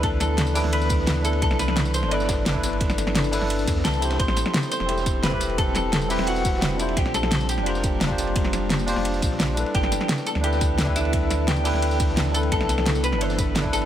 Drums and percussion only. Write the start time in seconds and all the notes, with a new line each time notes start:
0.03 kick, closed hi-hat, ride
0.20 snare, closed hi-hat, ride, tambourine
0.38 snare, closed hi-hat, ride
0.47 tambourine
0.55 snare, closed hi-hat, open hi-hat, tambourine
0.64 snare
0.73 closed hi-hat, ride
0.81 snare, tambourine
0.89 kick, closed hi-hat, ride, tambourine
0.99 snare
1.07 snare, closed hi-hat, ride
1.16 snare
1.24 closed hi-hat, ride, tambourine
1.33 ride
1.42 kick, closed hi-hat, ride
1.51 snare
1.59 snare, closed hi-hat, ride, tambourine
1.68 snare
1.76 snare, closed hi-hat, ride
1.85 snare, tambourine
1.94 closed hi-hat, ride, tambourine
2.03 snare
2.11 closed hi-hat, ride
2.20 snare, tambourine
2.29 kick, snare, closed hi-hat, ride, tambourine
2.46 snare, closed hi-hat, ride
2.55 kick
2.63 snare, closed hi-hat, ride, tambourine
2.73 ride
2.80 kick, closed hi-hat, ride
2.90 snare, tambourine
2.98 snare, closed hi-hat, ride, tambourine
3.07 snare
3.15 snare, closed hi-hat, ride
3.24 tambourine
3.32 snare, closed hi-hat, open hi-hat, tambourine
3.41 snare
3.50 closed hi-hat, ride
3.58 snare, tambourine
3.67 kick, closed hi-hat, ride, tambourine
3.76 snare
3.84 snare, closed hi-hat, ride
3.93 snare, tambourine
4.02 closed hi-hat, ride, tambourine
4.10 snare, ride
4.19 kick, closed hi-hat, ride
4.28 snare
4.36 snare, closed hi-hat, ride, tambourine
4.46 snare
4.54 snare, closed hi-hat, ride
4.62 snare, tambourine
4.72 closed hi-hat, ride, tambourine
4.80 snare
4.89 closed hi-hat, ride
4.97 snare, tambourine
5.06 kick, closed hi-hat, ride, tambourine
5.23 snare, closed hi-hat, ride
5.32 kick
5.40 snare, closed hi-hat, ride, tambourine
5.49 ride
5.58 kick, closed hi-hat, ride
5.75 snare, closed hi-hat, ride, tambourine
5.92 snare, closed hi-hat, ride
6.02 tambourine
6.10 snare, closed hi-hat, open hi-hat, tambourine
6.19 snare
6.27 closed hi-hat, ride
6.36 snare, tambourine
6.45 kick, closed hi-hat, ride, tambourine
6.54 snare
6.62 snare, closed hi-hat, ride
6.70 snare
6.79 closed hi-hat, ride, tambourine
6.88 ride
6.97 kick, closed hi-hat, ride
7.06 snare
7.14 snare, closed hi-hat, ride, tambourine
7.23 snare
7.31 snare, closed hi-hat, ride
7.40 snare, tambourine
7.49 closed hi-hat, ride, tambourine
7.58 snare
7.66 closed hi-hat, ride
7.75 snare, tambourine
7.83 kick, closed hi-hat, ride, tambourine
8.01 snare, closed hi-hat, ride
8.10 kick
8.18 snare, closed hi-hat, ride, tambourine
8.27 ride
8.36 kick, closed hi-hat, ride
8.45 snare
8.53 snare, closed hi-hat, ride, tambourine
8.70 snare, closed hi-hat, ride
8.79 tambourine
8.87 snare, closed hi-hat, open hi-hat, tambourine
8.96 snare
9.05 closed hi-hat, ride
9.14 snare, tambourine
9.22 kick, closed hi-hat, ride, tambourine
9.31 snare
9.39 snare, closed hi-hat, ride
9.48 snare
9.57 closed hi-hat, ride, tambourine
9.66 ride
9.75 kick, closed hi-hat, ride
9.83 snare
9.92 snare, closed hi-hat, ride, tambourine
10.01 snare
10.09 snare, closed hi-hat, ride
10.18 snare, tambourine
10.26 closed hi-hat, ride, tambourine
10.35 snare
10.44 closed hi-hat, ride
10.52 snare, tambourine
10.61 kick, closed hi-hat, ride, tambourine
10.78 snare, closed hi-hat, ride
10.87 kick
10.96 snare, closed hi-hat, ride, tambourine
11.05 ride
11.13 kick, closed hi-hat, ride
11.30 snare, closed hi-hat, ride, tambourine
11.48 snare, closed hi-hat, ride
11.56 tambourine
11.65 snare, closed hi-hat, open hi-hat, tambourine
11.74 snare
11.82 closed hi-hat, ride
11.91 snare, tambourine
12.00 kick, closed hi-hat, ride, tambourine
12.08 snare
12.17 snare, closed hi-hat, ride
12.26 snare
12.34 closed hi-hat, ride, tambourine
12.43 ride
12.52 kick, closed hi-hat, ride
12.61 snare
12.69 snare, closed hi-hat, ride, tambourine
12.78 snare
12.86 snare, closed hi-hat, ride
12.95 snare, tambourine
13.04 closed hi-hat, ride, tambourine
13.12 snare
13.21 closed hi-hat, ride
13.30 snare, tambourine
13.38 kick, closed hi-hat, ride, tambourine
13.55 snare, closed hi-hat, ride
13.65 kick
13.73 snare, closed hi-hat, ride, tambourine
13.82 ride